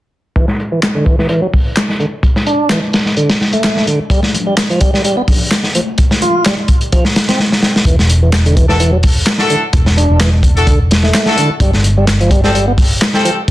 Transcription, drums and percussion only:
0.36 kick medium
0.36 closed hi-hat medium
0.48 snare soft
0.60 closed hi-hat medium
0.83 snare loud
0.83 clap medium
0.83 closed hi-hat medium
0.96 closed hi-hat soft
1.06 kick medium
1.06 closed hi-hat medium
1.19 snare soft
1.29 closed hi-hat medium
1.54 kick medium
1.54 open hi-hat medium
1.76 snare loud
1.76 clap medium
1.76 closed hi-hat medium
1.89 snare soft
2.00 closed hi-hat medium
2.23 kick loud
2.23 closed hi-hat medium
2.36 snare soft
2.46 closed hi-hat medium
2.69 snare loud
2.69 clap loud
2.69 closed hi-hat medium
2.93 snare loud
2.93 closed hi-hat medium
3.06 snare soft
3.17 closed hi-hat medium
3.29 snare medium
3.29 closed hi-hat medium
3.41 snare soft
3.53 closed hi-hat medium
3.64 snare loud
3.64 clap loud
3.64 closed hi-hat medium
3.77 snare medium
3.87 closed hi-hat medium
4.10 kick medium
4.10 closed hi-hat medium
4.23 snare soft
4.23 high conga medium
4.34 closed hi-hat medium
4.34 low conga medium
4.57 snare loud
4.57 clap loud
4.57 closed hi-hat medium
4.70 closed hi-hat soft
4.81 kick medium
4.81 closed hi-hat medium
4.94 snare soft
5.04 closed hi-hat medium
5.28 kick medium
5.28 open hi-hat medium
5.28 low conga medium
5.51 snare loud
5.51 clap loud
5.51 closed hi-hat medium
5.64 snare medium
5.75 closed hi-hat medium
5.75 high conga medium
5.98 kick medium
5.98 closed hi-hat medium
6.11 snare soft
6.11 high conga medium
6.22 closed hi-hat medium
6.22 low conga medium
6.45 snare medium
6.45 clap loud
6.45 closed hi-hat medium
6.68 kick medium
6.68 closed hi-hat medium
6.81 closed hi-hat soft
6.92 kick loud
6.92 closed hi-hat medium
7.05 snare soft
7.05 high conga medium
7.16 snare loud
7.16 closed hi-hat medium
7.28 snare loud
7.28 closed hi-hat medium
7.28 high conga medium
7.39 snare medium
7.52 snare medium
7.63 snare medium
7.76 snare medium
7.85 kick medium
7.85 closed hi-hat medium
7.99 snare medium
8.09 closed hi-hat medium
8.32 snare loud
8.32 clap loud
8.32 closed hi-hat medium
8.46 closed hi-hat soft
8.57 kick medium
8.57 closed hi-hat medium
8.69 snare soft
8.80 closed hi-hat medium
9.03 kick medium
9.03 open hi-hat medium
9.26 snare loud
9.26 clap loud
9.26 closed hi-hat medium
9.38 snare medium
9.50 closed hi-hat medium
9.73 kick loud
9.73 closed hi-hat medium
9.86 snare medium
9.98 closed hi-hat medium
10.20 snare loud
10.20 clap loud
10.20 closed hi-hat medium
10.43 kick medium
10.43 closed hi-hat medium
10.57 closed hi-hat soft
10.67 kick medium
10.67 closed hi-hat medium
10.91 snare loud
10.91 closed hi-hat medium
11.03 snare soft
11.14 snare loud
11.14 clap loud
11.14 closed hi-hat medium
11.26 snare medium
11.38 closed hi-hat medium
11.60 kick loud
11.60 closed hi-hat medium
11.74 snare soft
11.84 closed hi-hat medium
12.07 snare loud
12.07 clap loud
12.07 closed hi-hat medium
12.21 closed hi-hat soft
12.31 kick medium
12.31 closed hi-hat medium
12.44 snare soft
12.55 closed hi-hat medium
12.78 kick medium
12.78 open hi-hat medium
13.01 snare loud
13.01 clap loud
13.01 closed hi-hat medium
13.14 snare medium
13.25 closed hi-hat medium

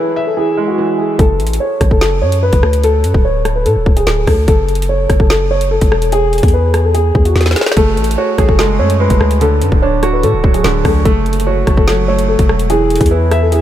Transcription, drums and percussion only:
1.19 kick loud
1.19 closed hi-hat medium
1.40 closed hi-hat medium
1.47 closed hi-hat medium
1.53 closed hi-hat loud
1.81 kick loud
1.81 cross-stick medium
1.81 closed hi-hat medium
1.91 kick loud
2.01 snare loud
2.32 closed hi-hat medium
2.53 kick medium
2.53 closed hi-hat medium
2.63 cross-stick loud
2.73 closed hi-hat medium
2.83 closed hi-hat medium
3.04 closed hi-hat medium
3.14 kick loud
3.45 cross-stick medium
3.45 closed hi-hat medium
3.66 closed hi-hat medium
3.86 kick loud
3.97 closed hi-hat medium
4.07 snare loud
4.07 closed hi-hat medium
4.27 kick loud
4.27 cross-stick loud
4.27 open hi-hat medium
4.48 kick loud
4.48 closed hi-hat medium
4.69 closed hi-hat medium
4.75 closed hi-hat medium
4.82 closed hi-hat medium
5.10 kick medium
5.10 cross-stick medium
5.10 closed hi-hat medium
5.20 kick loud
5.30 snare loud
5.61 closed hi-hat medium
5.81 kick medium
5.81 closed hi-hat medium
5.92 cross-stick loud
6.02 closed hi-hat medium
6.12 closed hi-hat medium
6.33 closed hi-hat medium
6.38 closed hi-hat medium
6.43 kick loud
6.43 closed hi-hat medium
6.48 closed hi-hat medium
6.74 cross-stick medium
6.74 closed hi-hat medium
6.95 closed hi-hat medium
7.15 kick loud
7.25 closed hi-hat medium
7.36 snare medium
7.36 closed hi-hat medium
7.41 snare medium
7.41 closed hi-hat medium
7.46 snare medium
7.46 closed hi-hat medium
7.51 snare medium
7.51 closed hi-hat medium
7.56 snare loud
7.56 closed hi-hat medium
7.61 snare medium
7.66 snare loud
7.72 snare loud
7.77 kick loud
7.77 closed hi-hat medium
7.97 closed hi-hat medium
8.04 closed hi-hat medium
8.11 closed hi-hat medium
8.38 kick loud
8.38 cross-stick medium
8.38 closed hi-hat medium
8.49 kick loud
8.59 snare loud
8.90 closed hi-hat medium
9.10 kick medium
9.10 closed hi-hat medium
9.21 cross-stick loud
9.31 closed hi-hat medium
9.41 closed hi-hat medium
9.62 closed hi-hat medium
9.72 kick loud
10.03 cross-stick medium
10.03 closed hi-hat medium
10.23 closed hi-hat medium
10.44 kick loud
10.54 closed hi-hat medium
10.64 snare loud
10.64 closed hi-hat medium
10.85 kick loud
10.85 cross-stick loud
10.85 open hi-hat medium
11.05 kick loud
11.05 closed hi-hat medium
11.26 closed hi-hat medium
11.33 closed hi-hat medium
11.40 closed hi-hat medium
11.67 kick loud
11.67 cross-stick medium
11.67 closed hi-hat medium
11.77 kick loud
11.88 snare loud
12.19 closed hi-hat medium
12.39 kick medium
12.39 closed hi-hat medium
12.49 cross-stick loud
12.59 closed hi-hat medium
12.70 closed hi-hat medium
12.90 closed hi-hat medium
12.96 closed hi-hat medium
13.01 kick loud
13.01 closed hi-hat medium
13.06 closed hi-hat medium
13.31 cross-stick medium
13.31 closed hi-hat medium
13.52 closed hi-hat medium

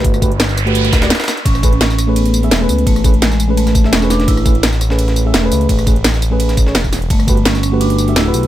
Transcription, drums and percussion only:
0.04 kick loud
0.04 closed hi-hat medium
0.04 closed hi-hat loud
0.14 cross-stick soft
0.14 closed hi-hat soft
0.14 tambourine soft
0.22 kick loud
0.22 closed hi-hat medium
0.22 tambourine medium
0.32 closed hi-hat soft
0.40 snare loud
0.40 closed hi-hat medium
0.40 closed hi-hat loud
0.49 snare soft
0.49 tambourine soft
0.57 cross-stick soft
0.57 closed hi-hat medium
0.57 tambourine medium
0.67 closed hi-hat soft
0.75 closed hi-hat medium
0.75 closed hi-hat loud
0.84 snare soft
0.84 closed hi-hat soft
0.84 tambourine soft
0.93 kick loud
0.93 snare loud
0.93 closed hi-hat medium
0.93 tambourine medium
1.02 snare loud
1.02 closed hi-hat medium
1.10 snare medium
1.10 snare loud
1.10 closed hi-hat medium
1.10 closed hi-hat loud
1.15 snare medium
1.15 closed hi-hat medium
1.20 snare medium
1.20 closed hi-hat medium
1.20 tambourine soft
1.24 snare medium
1.24 closed hi-hat medium
1.28 snare loud
1.28 snare soft
1.28 closed hi-hat medium
1.28 tambourine medium
1.37 snare soft
1.37 closed hi-hat soft
1.45 kick loud
1.45 closed hi-hat medium
1.45 closed hi-hat loud
1.45 ride medium
1.55 cross-stick soft
1.55 tambourine soft
1.63 kick loud
1.63 closed hi-hat medium
1.63 tambourine medium
1.73 closed hi-hat soft
1.81 snare loud
1.81 closed hi-hat medium
1.81 closed hi-hat loud
1.81 ride medium
1.90 snare soft
1.90 tambourine soft
1.98 cross-stick soft
1.98 closed hi-hat medium
1.98 tambourine medium
2.16 closed hi-hat loud
2.16 closed hi-hat medium
2.16 ride medium
2.25 closed hi-hat soft
2.25 closed hi-hat medium
2.34 closed hi-hat medium
2.34 tambourine medium
2.43 closed hi-hat medium
2.51 snare loud
2.51 closed hi-hat medium
2.51 closed hi-hat loud
2.51 ride medium
2.69 closed hi-hat medium
2.69 open hi-hat medium
2.69 tambourine medium
2.78 closed hi-hat soft
2.87 kick loud
2.87 closed hi-hat medium
2.87 closed hi-hat loud
2.87 ride medium
2.96 cross-stick soft
2.96 closed hi-hat soft
2.96 tambourine soft
3.04 kick loud
3.04 closed hi-hat medium
3.04 tambourine medium
3.14 closed hi-hat soft
3.22 snare loud
3.22 closed hi-hat medium
3.22 ride medium
3.31 snare soft
3.31 tambourine soft
3.40 closed hi-hat medium
3.40 tambourine medium
3.57 closed hi-hat medium
3.57 closed hi-hat loud
3.57 ride medium
3.67 snare soft
3.67 closed hi-hat soft
3.67 tambourine soft
3.75 kick loud
3.75 closed hi-hat medium
3.75 tambourine medium
3.84 snare soft
3.93 snare loud
3.93 closed hi-hat medium
3.93 closed hi-hat loud
3.93 ride medium
4.02 snare soft
4.02 tambourine soft
4.10 snare soft
4.10 closed hi-hat medium
4.10 open hi-hat medium
4.10 tambourine medium
4.20 snare medium
4.20 closed hi-hat soft
4.28 kick loud
4.28 closed hi-hat medium
4.28 closed hi-hat loud
4.28 ride medium
4.37 cross-stick soft
4.37 tambourine soft
4.46 kick loud
4.46 closed hi-hat medium
4.46 tambourine medium
4.55 closed hi-hat soft
4.63 snare loud
4.63 closed hi-hat medium
4.63 ride medium
4.73 snare soft
4.73 tambourine soft
4.81 cross-stick soft
4.81 closed hi-hat medium
4.81 tambourine medium
4.90 snare medium
4.99 closed hi-hat medium
4.99 ride medium
5.08 snare soft
5.08 closed hi-hat soft
5.16 closed hi-hat medium
5.16 tambourine medium
5.34 snare loud
5.34 closed hi-hat medium
5.34 ride medium
5.52 closed hi-hat medium
5.52 open hi-hat medium
5.52 tambourine medium
5.61 closed hi-hat soft
5.69 kick loud
5.69 closed hi-hat medium
5.69 ride medium
5.79 cross-stick soft
5.79 closed hi-hat soft
5.79 tambourine soft
5.87 kick loud
5.87 closed hi-hat medium
5.87 tambourine medium
5.96 closed hi-hat soft
6.04 snare loud
6.04 closed hi-hat medium
6.04 ride medium
6.14 snare soft
6.14 tambourine soft
6.22 closed hi-hat medium
6.22 tambourine medium
6.40 closed hi-hat medium
6.40 ride medium
6.49 snare soft
6.49 closed hi-hat soft
6.49 tambourine soft
6.57 kick loud
6.57 closed hi-hat medium
6.57 tambourine medium
6.67 snare soft
6.75 snare loud
6.75 closed hi-hat medium
6.75 ride medium
6.84 kick medium
6.84 tambourine soft
6.92 snare soft
6.92 open hi-hat medium
6.92 tambourine medium
7.02 closed hi-hat soft
7.10 kick loud
7.10 closed hi-hat medium
7.10 ride medium
7.20 cross-stick soft
7.20 tambourine soft
7.28 kick loud
7.28 closed hi-hat medium
7.28 tambourine medium
7.37 closed hi-hat soft
7.45 snare loud
7.45 closed hi-hat medium
7.45 ride medium
7.55 snare soft
7.55 tambourine soft
7.63 cross-stick soft
7.63 closed hi-hat medium
7.63 tambourine medium
7.81 closed hi-hat medium
7.81 ride medium
7.90 closed hi-hat medium
7.90 closed hi-hat soft
7.98 closed hi-hat medium
7.98 tambourine medium
8.08 closed hi-hat medium
8.16 snare loud
8.16 closed hi-hat medium
8.16 ride medium
8.34 closed hi-hat medium
8.34 open hi-hat medium
8.34 tambourine medium
8.43 closed hi-hat soft

